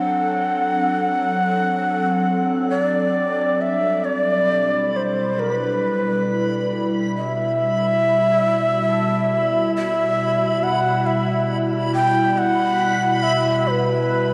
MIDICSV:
0, 0, Header, 1, 5, 480
1, 0, Start_track
1, 0, Tempo, 884956
1, 39, Time_signature, 4, 2, 24, 8
1, 3399, Tempo, 870827
1, 7847, End_track
2, 0, Start_track
2, 0, Title_t, "Synth texture"
2, 0, Program_c, 0, 99
2, 1953, Note_on_c, 0, 83, 83
2, 7847, Note_off_c, 0, 83, 0
2, 7847, End_track
3, 0, Start_track
3, 0, Title_t, "Shakuhachi"
3, 0, Program_c, 1, 77
3, 0, Note_on_c, 1, 78, 97
3, 1463, Note_off_c, 1, 78, 0
3, 1466, Note_on_c, 1, 74, 88
3, 1959, Note_on_c, 1, 76, 86
3, 1967, Note_off_c, 1, 74, 0
3, 2193, Note_on_c, 1, 74, 84
3, 2201, Note_off_c, 1, 76, 0
3, 2693, Note_on_c, 1, 72, 68
3, 2701, Note_off_c, 1, 74, 0
3, 2927, Note_on_c, 1, 70, 92
3, 2935, Note_off_c, 1, 72, 0
3, 2997, Note_off_c, 1, 70, 0
3, 2997, Note_on_c, 1, 71, 92
3, 3739, Note_off_c, 1, 71, 0
3, 3896, Note_on_c, 1, 76, 107
3, 5301, Note_off_c, 1, 76, 0
3, 5328, Note_on_c, 1, 76, 98
3, 5807, Note_on_c, 1, 78, 104
3, 5815, Note_off_c, 1, 76, 0
3, 6044, Note_on_c, 1, 76, 91
3, 6052, Note_off_c, 1, 78, 0
3, 6371, Note_off_c, 1, 76, 0
3, 6529, Note_on_c, 1, 79, 98
3, 6769, Note_on_c, 1, 78, 109
3, 6778, Note_off_c, 1, 79, 0
3, 7239, Note_on_c, 1, 76, 98
3, 7247, Note_off_c, 1, 78, 0
3, 7481, Note_on_c, 1, 72, 84
3, 7490, Note_off_c, 1, 76, 0
3, 7500, Note_on_c, 1, 71, 91
3, 7505, Note_off_c, 1, 72, 0
3, 7847, Note_off_c, 1, 71, 0
3, 7847, End_track
4, 0, Start_track
4, 0, Title_t, "Harp"
4, 0, Program_c, 2, 46
4, 2439, Note_on_c, 2, 67, 66
4, 2918, Note_on_c, 2, 66, 52
4, 3818, Note_off_c, 2, 67, 0
4, 4297, Note_off_c, 2, 66, 0
4, 4842, Note_on_c, 2, 69, 67
4, 4992, Note_on_c, 2, 74, 48
4, 6210, Note_off_c, 2, 69, 0
4, 6344, Note_off_c, 2, 74, 0
4, 7723, Note_on_c, 2, 71, 54
4, 7847, Note_off_c, 2, 71, 0
4, 7847, End_track
5, 0, Start_track
5, 0, Title_t, "Ambient pad"
5, 0, Program_c, 3, 92
5, 0, Note_on_c, 3, 54, 66
5, 0, Note_on_c, 3, 60, 74
5, 0, Note_on_c, 3, 62, 70
5, 0, Note_on_c, 3, 69, 67
5, 1956, Note_off_c, 3, 54, 0
5, 1959, Note_on_c, 3, 55, 75
5, 1966, Note_off_c, 3, 60, 0
5, 2346, Note_on_c, 3, 47, 74
5, 2472, Note_on_c, 3, 64, 87
5, 3268, Note_off_c, 3, 62, 0
5, 3399, Note_off_c, 3, 69, 0
5, 7847, Note_off_c, 3, 47, 0
5, 7847, Note_off_c, 3, 55, 0
5, 7847, Note_off_c, 3, 64, 0
5, 7847, End_track
0, 0, End_of_file